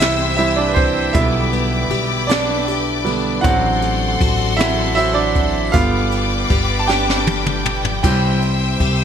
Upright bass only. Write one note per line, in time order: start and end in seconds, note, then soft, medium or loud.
0.00 1.10 C2 medium
1.14 1.87 B1 loud
1.90 3.40 B1 medium
3.44 4.17 A1 loud
4.20 5.70 A1 loud
5.74 6.46 G1 loud
6.50 8.00 G1 medium
8.03 8.76 C2 loud
8.80 9.04 C2 medium